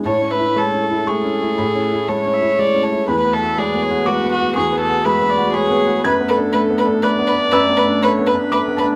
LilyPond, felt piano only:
<<
  \new Staff \with { instrumentName = "Felt piano" } { \time 3/4 \key a \major \tempo 4 = 120 a''2 cis'''4 | b''4 a''4 r8 a''8 | b''2 d'''4 | cis'''4 b''4 b''4 |
gis'''2 fis'''4 | e'''2 d'''8 a''8 | }
  \new Staff \with { instrumentName = "Felt piano" } { \time 3/4 \key a \major \tuplet 3/2 { a,8 cis'8 e'8 gis8 cis'8 e'8 gis8 cis'8 e'8 } | \tuplet 3/2 { a,8 cis'8 e'8 gis8 cis'8 e'8 gis8 cis'8 e'8 } | \tuplet 3/2 { e,8 b8 fis'8 gis8 b8 fis'8 gis8 b8 fis'8 } | \tuplet 3/2 { e,8 b8 fis'8 gis8 b8 fis'8 gis8 b8 fis'8 } |
\tuplet 3/2 { fis,8 b8 d'8 a8 b8 d'8 a8 b8 d'8 } | \tuplet 3/2 { fis,8 b8 d'8 a8 b8 d'8 a8 b8 d'8 } | }
>>